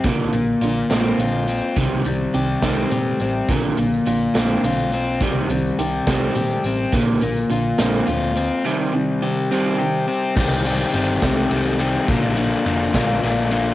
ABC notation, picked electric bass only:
X:1
M:6/8
L:1/8
Q:3/8=70
K:Cm
V:1 name="Picked electric bass" clef=bass
B,,, B,,, B,,, B,,, B,,,2 | C,, C,, C,, C,, B,, =A,,, | B,,, B,,, B,,, B,,, =B,,,2 | C,, C,, C,, C,, B,, =A,,, |
B,,, B,,, B,,, B,,, D,,2 | z6 | C,,2 G,,, C,, C,,2 | B,,,2 F,,, B,,, B,,,2 |]